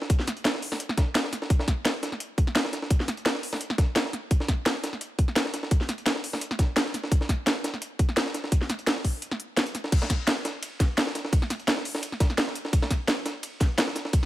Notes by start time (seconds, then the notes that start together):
0.02 snare
0.10 kick, closed hi-hat
0.19 snare
0.27 snare, closed hi-hat
0.37 closed hi-hat
0.45 snare, closed hi-hat
0.54 snare
0.62 closed hi-hat, open hi-hat
0.72 snare
0.80 closed hi-hat
0.89 snare
0.97 kick, snare, closed hi-hat
1.15 snare, closed hi-hat
1.24 snare
1.33 snare, closed hi-hat
1.42 snare
1.50 kick, closed hi-hat
1.59 snare
1.68 kick, snare, closed hi-hat
1.85 snare, closed hi-hat
2.03 snare, closed hi-hat
2.12 snare
2.20 closed hi-hat
2.38 kick, closed hi-hat
2.47 snare
2.55 snare, closed hi-hat
2.65 snare
2.73 snare, closed hi-hat
2.82 snare
2.90 kick, closed hi-hat
3.00 snare
3.08 snare, closed hi-hat
3.17 closed hi-hat
3.26 snare, closed hi-hat
3.35 snare
3.43 closed hi-hat, open hi-hat
3.53 snare
3.61 closed hi-hat
3.70 snare
3.78 kick, snare, closed hi-hat
3.96 snare, closed hi-hat
4.05 snare
4.13 snare, closed hi-hat
4.31 kick, closed hi-hat
4.40 snare
4.48 kick, snare, closed hi-hat
4.66 snare, closed hi-hat
4.84 snare, closed hi-hat
4.93 snare
5.01 closed hi-hat
5.19 kick, closed hi-hat
5.28 snare
5.36 snare, closed hi-hat
5.46 snare
5.54 snare, closed hi-hat
5.63 snare
5.71 kick, closed hi-hat
5.81 snare
5.89 snare, closed hi-hat
5.98 closed hi-hat
6.06 snare, closed hi-hat
6.16 snare
6.24 closed hi-hat, open hi-hat
6.33 snare
6.41 closed hi-hat
6.51 snare
6.59 kick, snare, closed hi-hat
6.76 snare, closed hi-hat
6.86 snare
6.94 snare, closed hi-hat
7.03 snare
7.12 kick, closed hi-hat
7.21 snare
7.29 kick, snare, closed hi-hat
7.47 snare, closed hi-hat
7.64 snare, closed hi-hat
7.74 snare
7.82 closed hi-hat
7.99 kick, closed hi-hat
8.09 snare
8.17 snare, closed hi-hat
8.26 snare
8.34 snare, closed hi-hat
8.44 snare
8.52 kick, closed hi-hat
8.61 snare
8.69 snare, closed hi-hat
8.79 closed hi-hat
8.87 snare, closed hi-hat
8.96 snare
9.04 kick, closed hi-hat, open hi-hat
9.22 closed hi-hat
9.31 snare
9.40 closed hi-hat
9.57 snare, closed hi-hat
9.66 closed hi-hat
9.75 snare, closed hi-hat
9.84 snare
9.92 kick, closed hi-hat, crash, ride
10.02 snare
10.10 kick, snare, closed hi-hat, ride
10.27 snare, closed hi-hat, ride
10.45 snare, closed hi-hat, ride
10.63 closed hi-hat, ride
10.80 kick, snare, closed hi-hat, ride
10.98 snare, closed hi-hat, ride
11.07 snare
11.15 snare, closed hi-hat, ride
11.25 snare
11.33 kick, closed hi-hat, ride
11.42 snare
11.50 snare, closed hi-hat, ride
11.60 closed hi-hat
11.68 snare, closed hi-hat, ride
11.77 snare
11.85 closed hi-hat, open hi-hat, ride
11.95 snare
12.03 closed hi-hat, ride
12.12 snare
12.20 kick, snare, closed hi-hat, ride
12.30 snare
12.38 snare, closed hi-hat, ride
12.47 snare
12.55 closed hi-hat, ride
12.65 snare
12.73 kick, closed hi-hat, ride
12.82 snare
12.90 kick, snare, closed hi-hat, ride
13.08 snare, closed hi-hat, ride
13.26 snare, closed hi-hat, ride
13.43 closed hi-hat, ride
13.61 kick, snare, closed hi-hat, ride
13.78 snare, closed hi-hat, ride
13.87 snare
13.96 snare, closed hi-hat, ride
14.05 snare
14.13 kick, closed hi-hat, ride